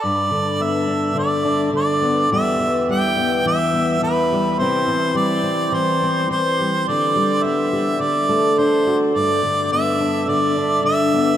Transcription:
<<
  \new Staff \with { instrumentName = "Harmonica" } { \time 4/4 \key g \major \tempo 4 = 105 d''4 e''4 d''4 d''4 | e''4 g''4 e''4 b'4 | c''4 d''4 c''4 c''4 | d''4 e''4 d''4 c''4 |
d''4 e''4 d''4 e''4 | }
  \new Staff \with { instrumentName = "Steel-string acoustic guitar" } { \clef bass \time 4/4 \key g \major << { r4 b8 d'4 d'4 b8 | <e g b g'>4 g8 b4 b4 g8 | <e g c' e'>4 g8 c'4 c'4 g8~ | g8 r8 b8 g'8 r4 d'8 fis'8 |
r4 b8 d'4 d'4 b8 | } \\ { g,8 d4. d4 d4 | e,8 e4. e4 e4 | c8 e4. e4 e4 | d8 g4. d8 a4. |
g,8 d4. d4 d4 | } >> }
>>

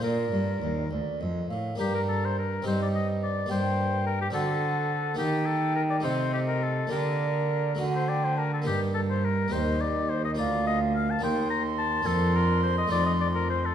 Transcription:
<<
  \new Staff \with { instrumentName = "Flute" } { \time 6/8 \key bes \major \tempo 4. = 70 d''4. d''8 ees''8 f''8 | \key g \minor bes''4. ees''4. | g''4. fis''4. | g''4. ees''4. |
d''4. fis''8 g''8 a''8 | \key bes \major r4. ees''4. | f''4. c'''4.~ | c'''2. | }
  \new Staff \with { instrumentName = "Oboe" } { \time 6/8 \key bes \major bes'4. r4. | \key g \minor g'16 bes'16 a'16 c''16 bes'8 c''16 d''16 ees''8 d''8 | c''4 bes'16 g'16 a'4. | g'8 a'8 bes'16 d''16 c''8 g'16 bes'16 a'8 |
bes'4. r16 c''16 d''16 c''16 bes'16 a'16 | \key bes \major g'8 a'16 c''16 bes'8 c''8 d''8 c''16 ees''16 | d''8 ees''8 f''16 a''16 g''8 bes''8 a''8 | a'8 bes'8 c''16 ees''16 d''16 ees''16 d''16 bes'16 c''16 a'16 | }
  \new Staff \with { instrumentName = "Harpsichord" } { \time 6/8 \key bes \major <bes d' f'>2. | \key g \minor <bes d' g'>4. <c' ees' g'>4. | <bes d' g'>4. <c' d' fis'>4. | <bes ees' g'>4. <a ees' g'>4. |
<bes d' g'>4. <a d' fis'>4. | \key bes \major <bes ees' g'>4. <bes ees' g'>4. | <bes f' bes'>4. <bes ees' bes'>4. | <bes d' f'>4. <a ees' f'>4. | }
  \new Staff \with { instrumentName = "Harpsichord" } { \clef bass \time 6/8 \key bes \major bes,8 g,8 ees,8 d,8 f,8 a,8 | \key g \minor g,4. g,4. | g,4. d4. | ees4. c4. |
d4. d4. | \key bes \major g,4. ees,4. | d,4. ees,4. | f,4. f,4. | }
  \new Staff \with { instrumentName = "Cello" } { \clef bass \time 6/8 \key bes \major bes,8 g,8 ees,8 d,8 f,8 a,8 | \key g \minor g,4. g,4. | g,4. d4. | ees4. c4. |
d4. d4. | \key bes \major g,4. ees,4. | d,4. ees,4. | f,4. f,4. | }
>>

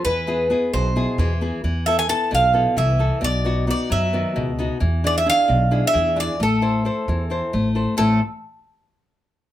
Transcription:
<<
  \new Staff \with { instrumentName = "Bouzouki" } { \time 7/8 \key a \minor \tempo 4 = 132 b'4. c''4. r8 | r8 e''16 gis''16 a''8 f''4 e''4 | d''4 d''8 e''4. r8 | r8 d''16 e''16 f''4~ f''16 e''8. d''8 |
a'2~ a'8 r4 | a'8 r2. | }
  \new Staff \with { instrumentName = "Nylon-string guitar" } { \time 7/8 \key a \minor e8 <b e' gis'>8 <b e' gis'>8 b,8 <b, e' gis'>8 e8 <b e' gis'>8 | e8 <b e' a'>8 <b e' a'>8 b,8 <b e' a'>8 e8 <b e' a'>8 | b,8 <b dis' fis'>8 <b dis' fis'>8 fis8 <dis b fis'>8 b,8 <b dis' fis'>8 | e8 <d' e' gis'>8 <d' e' gis'>8 b,8 <d' e' gis'>8 e8 <d' e' gis'>8 |
a8 <e' a' c''>8 <e' a' c''>8 e8 <e' a' c''>8 a8 <e' a' c''>8 | <a, e a c' e'>8 r2. | }
  \new Staff \with { instrumentName = "Upright bass" } { \clef bass \time 7/8 \key a \minor e,4. b,,4 e,4 | e,4. b,,4 c,4 | b,,4. fis,4 cis,4 | e,4. b,,4 e,4 |
a,,4. e,4 a,,4 | a,,8 r2. | }
>>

